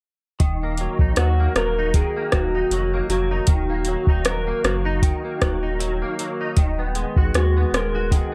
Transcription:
0.40 0.88 D#1 loud
0.40 1.95 D#3 medium
0.40 kick medium
0.40 closed hi-hat medium
0.63 1.39 A#3 soft
0.77 1.18 F#3 soft
0.77 closed hi-hat soft
0.99 1.13 A#1 medium
0.99 1.78 D#4 medium
0.99 kick medium
1.16 1.48 D#2 loud
1.16 1.57 F#3 medium
1.16 1.57 F#4 medium
1.16 cross-stick medium
1.16 closed hi-hat medium
1.40 2.15 A#3 soft
1.55 2.03 D#1 loud
1.55 2.34 F#3 medium
1.55 1.93 A#4 loud
1.55 cross-stick medium
1.55 closed hi-hat soft
1.79 2.55 D#4 medium
1.94 3.48 D#3 medium
1.94 2.34 G#4 medium
1.94 kick medium
1.94 closed hi-hat medium
2.17 2.92 A#3 soft
2.32 2.64 D#1 medium
2.32 2.72 F#3 soft
2.32 3.06 F#4 medium
2.32 kick medium
2.32 cross-stick medium
2.32 closed hi-hat soft
2.55 3.31 D#4 medium
2.71 3.02 F1 loud
2.71 3.10 F#3 medium
2.71 closed hi-hat medium
2.94 3.68 A#3 soft
3.09 3.40 F1 loud
3.09 3.87 F#3 medium
3.09 4.29 F#4 medium
3.09 closed hi-hat soft
3.31 4.08 D#4 soft
3.47 3.96 D#1 loud
3.47 5.02 D#3 medium
3.47 kick medium
3.47 closed hi-hat medium
3.70 4.46 A#3 medium
3.85 4.26 F#3 soft
3.85 closed hi-hat soft
4.07 4.52 D#1 medium
4.07 4.85 D#4 medium
4.07 kick medium
4.25 4.64 F#3 medium
4.25 4.65 A#4 medium
4.25 cross-stick medium
4.25 closed hi-hat medium
4.47 5.23 A#3 medium
4.64 5.12 F#1 medium
4.64 5.42 F#3 medium
4.64 6.15 F#4 medium
4.64 cross-stick medium
4.64 closed hi-hat soft
4.85 5.62 D#4 medium
5.02 6.58 D#3 medium
5.02 kick medium
5.02 closed hi-hat medium
5.24 6.01 A#3 soft
5.42 6.03 D#1 medium
5.42 5.79 F#3 soft
5.42 kick medium
5.42 cross-stick medium
5.42 closed hi-hat soft
5.63 6.40 D#4 soft
5.79 6.19 F#3 medium
5.79 closed hi-hat medium
6.02 6.66 A#3 medium
6.19 6.95 F#3 medium
6.19 closed hi-hat soft
6.41 7.17 D#4 medium
6.57 7.05 D#1 loud
6.57 8.11 D#3 medium
6.57 kick medium
6.57 closed hi-hat medium
6.79 7.56 B3 soft
6.95 7.35 G#3 medium
6.95 closed hi-hat soft
7.16 7.31 G#1 medium
7.16 7.94 F#4 medium
7.16 kick medium
7.34 7.65 D#2 medium
7.34 7.74 G#3 medium
7.34 7.75 F#4 medium
7.34 cross-stick medium
7.34 closed hi-hat medium
7.57 8.31 B3 soft
7.73 8.21 D#1 medium
7.73 8.34 G#3 medium
7.73 cross-stick medium
7.73 closed hi-hat soft
7.77 8.14 A#4 medium
7.95 8.34 F#4 medium
8.11 8.34 D#3 medium
8.11 8.34 G#4 medium
8.11 kick medium
8.11 closed hi-hat medium

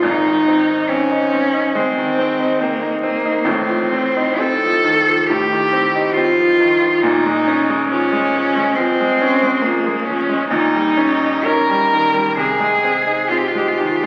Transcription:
0.03 1.71 G#1 medium
0.03 1.72 G#2 medium
0.03 0.91 D#4 loud
0.27 0.60 D#3 soft
0.48 0.82 C4 soft
0.69 1.03 D#4 soft
0.89 1.24 C4 medium
0.89 1.78 C#4 medium
1.11 1.45 D#4 soft
1.33 1.67 C4 soft
1.53 1.88 D#4 soft
1.75 2.10 G#3 medium
1.75 2.64 C4 medium
1.98 2.32 D#3 soft
2.19 2.53 C4 medium
2.39 2.73 D#4 medium
2.61 3.02 A#3 medium
2.61 2.94 C4 medium
2.82 3.15 D#4 soft
3.02 3.47 A#3 medium
3.02 3.37 C4 medium
3.25 3.46 D#4 soft
3.45 5.23 A1 medium
3.45 5.24 A2 medium
3.45 4.40 C4 medium
3.69 4.07 F3 soft
3.92 4.30 C4 medium
4.17 4.54 D#4 soft
4.39 4.76 C4 medium
4.39 5.28 A4 loud
4.64 4.98 F3 soft
4.84 5.19 D#3 soft
5.08 5.41 F3 soft
5.27 6.99 A2 medium
5.27 6.14 G4 loud
5.52 5.85 D#3 soft
5.73 6.06 C4 medium
5.95 6.29 D#4 soft
6.13 7.03 F4 loud
6.17 6.51 C4 medium
6.39 6.73 F3 soft
6.60 6.94 D#3 medium
6.82 7.03 F3 soft
7.01 8.74 A#1 medium
7.01 8.74 A#2 medium
7.01 7.89 D#4 loud
7.26 7.60 G#3 soft
7.47 7.82 C#4 soft
7.70 8.04 G#3 soft
7.90 8.26 F3 soft
7.90 8.77 C#4 loud
8.13 8.47 G#3 medium
8.35 8.69 F3 soft
8.56 8.90 G#3 soft
8.76 9.12 F3 medium
8.76 9.63 C4 loud
9.01 9.34 G#3 soft
9.22 9.55 C#4 medium
9.43 9.76 G#3 soft
9.61 9.97 F3 soft
9.61 10.06 A#3 medium
9.86 10.19 G#3 soft
10.04 10.48 C#4 medium
10.08 10.41 F3 soft
10.29 10.50 G#3 soft
10.49 12.34 A#1 medium
10.49 12.34 A#2 medium
10.49 11.46 D#4 loud
10.73 11.12 G3 soft
10.97 11.36 C#4 medium
11.23 11.60 D#4 soft
11.45 11.83 C#4 soft
11.45 12.37 A#4 loud
11.70 12.05 G3 soft
11.93 12.28 D#3 soft
12.14 12.37 G3 soft
12.37 14.06 C3 medium
12.37 13.31 G#4 medium
12.60 12.97 G#3 soft
12.84 13.21 C4 soft
13.07 13.45 D#4 soft
13.30 13.70 C4 soft
13.30 13.40 F4 medium
13.38 13.49 G4 medium
13.48 13.59 F4 medium
13.55 13.94 G#3 soft
13.55 13.69 G4 medium
13.68 13.79 F4 medium
13.78 14.06 D#3 soft
13.78 13.87 G4 medium
13.86 13.97 F4 medium
13.96 14.05 G4 medium

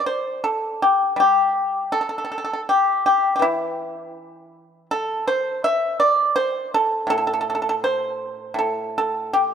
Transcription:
0.06 0.41 C5 medium
0.44 0.79 A4 medium
0.82 1.17 G4 medium
1.16 3.41 G3 medium
1.16 1.90 G4 medium
1.92 2.00 A4 medium
2.01 2.08 A4 medium
2.09 2.16 A4 medium
2.18 2.23 A4 soft
2.25 2.30 A4 medium
2.32 2.37 A4 soft
2.38 2.43 A4 medium
2.45 2.52 A4 medium
2.53 2.60 A4 medium
2.69 3.03 G4 medium
3.06 3.34 G4 medium
3.36 5.62 E3 soft
3.36 3.42 G4 medium
3.42 4.86 E4 medium
4.91 5.25 A4 medium
5.28 5.61 C5 medium
5.64 5.97 E5 loud
6.00 6.34 D5 medium
6.36 6.70 C5 medium
6.74 7.07 A4 medium
7.07 8.53 A2 medium
7.07 7.16 A4 medium
7.18 7.24 A4 medium
7.27 7.32 A4 medium
7.33 7.39 A4 medium
7.41 7.46 A4 medium
7.50 7.54 A4 medium
7.55 7.60 A4 medium
7.62 7.67 A4 medium
7.69 7.74 A4 medium
7.84 8.54 C5 medium
8.54 9.54 A2 medium
8.59 8.94 A4 medium
8.98 9.32 A4 medium
9.33 9.54 G4 medium

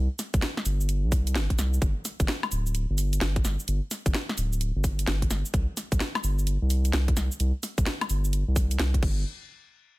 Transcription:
0.19 snare soft
0.19 open hi-hat loud
0.19 shaker medium
0.34 0.41 C2 loud
0.34 kick loud
0.34 closed hi-hat medium
0.34 shaker soft
0.42 snare loud
0.42 shaker soft
0.57 snare medium
0.65 1.05 G1 medium
0.65 open hi-hat loud
0.65 shaker medium
0.81 shaker soft
0.89 closed hi-hat medium
0.89 shaker soft
1.04 1.37 C2 loud
1.12 kick loud
1.12 open hi-hat loud
1.12 shaker medium
1.27 closed hi-hat medium
1.27 shaker soft
1.35 1.48 G1 medium
1.35 snare loud
1.35 shaker soft
1.50 kick medium
1.50 closed hi-hat soft
1.58 1.79 C2 medium
1.58 snare medium
1.58 open hi-hat loud
1.58 shaker medium
1.74 shaker soft
1.82 1.94 G1 loud
1.82 kick loud
1.82 closed hi-hat medium
1.82 shaker soft
2.05 snare soft
2.05 open hi-hat loud
2.05 shaker medium
2.20 2.27 G1 loud
2.20 kick loud
2.20 closed hi-hat medium
2.20 shaker soft
2.28 snare loud
2.28 shaker soft
2.43 snare medium
2.43 high woodblock medium
2.52 2.86 D1 medium
2.52 open hi-hat loud
2.52 shaker medium
2.66 shaker soft
2.75 closed hi-hat medium
2.75 shaker soft
2.90 3.19 G1 loud
2.98 open hi-hat loud
2.98 shaker medium
3.13 closed hi-hat medium
3.13 shaker soft
3.21 3.42 G1 loud
3.21 snare loud
3.21 shaker soft
3.36 kick loud
3.36 closed hi-hat medium
3.44 3.57 G1 loud
3.44 snare medium
3.44 open hi-hat loud
3.44 shaker medium
3.60 shaker soft
3.68 3.80 G1 loud
3.68 closed hi-hat medium
3.68 shaker soft
3.91 snare soft
3.91 open hi-hat loud
3.91 shaker medium
4.06 4.13 G1 loud
4.06 kick loud
4.06 closed hi-hat medium
4.06 shaker soft
4.14 snare loud
4.14 shaker soft
4.29 snare medium
4.37 4.72 D1 medium
4.37 open hi-hat loud
4.37 shaker medium
4.53 shaker soft
4.61 closed hi-hat medium
4.61 shaker soft
4.76 5.05 G1 loud
4.84 kick loud
4.84 open hi-hat loud
4.84 shaker medium
4.99 closed hi-hat medium
4.99 shaker soft
5.07 5.28 G1 loud
5.07 snare loud
5.07 shaker soft
5.22 kick medium
5.22 closed hi-hat medium
5.31 5.43 G1 loud
5.31 snare medium
5.31 open hi-hat loud
5.31 shaker medium
5.45 shaker soft
5.54 5.66 C2 loud
5.54 kick loud
5.54 closed hi-hat medium
5.54 shaker soft
5.77 snare soft
5.77 open hi-hat loud
5.77 shaker medium
5.92 5.99 C2 loud
5.92 kick loud
5.92 closed hi-hat medium
5.92 shaker soft
6.00 snare loud
6.00 shaker soft
6.15 snare medium
6.15 high woodblock medium
6.23 6.58 G1 medium
6.23 open hi-hat loud
6.23 shaker medium
6.39 shaker soft
6.47 closed hi-hat medium
6.47 shaker soft
6.62 6.91 C2 loud
6.70 open hi-hat loud
6.70 shaker medium
6.85 closed hi-hat medium
6.85 shaker soft
6.93 7.14 C2 loud
6.93 snare loud
6.93 shaker soft
7.08 kick loud
7.08 closed hi-hat medium
7.17 7.29 C2 loud
7.17 snare medium
7.17 open hi-hat loud
7.17 shaker medium
7.32 shaker soft
7.40 7.52 C2 loud
7.40 closed hi-hat medium
7.40 shaker soft
7.63 snare soft
7.63 open hi-hat loud
7.63 shaker medium
7.78 7.85 C2 loud
7.78 kick loud
7.78 closed hi-hat medium
7.78 shaker soft
7.86 snare loud
7.86 shaker soft
8.01 snare medium
8.01 closed hi-hat soft
8.01 high woodblock medium
8.10 8.44 G1 medium
8.10 open hi-hat loud
8.10 shaker medium
8.25 shaker soft
8.33 closed hi-hat medium
8.33 shaker soft
8.48 8.77 C2 loud
8.56 kick loud
8.56 open hi-hat loud
8.56 shaker medium
8.71 closed hi-hat medium
8.71 shaker soft
8.79 9.00 C2 loud
8.79 snare loud
8.79 shaker soft
8.94 kick medium
8.94 closed hi-hat medium
9.03 9.24 G1 loud
9.03 kick loud
9.03 crash medium

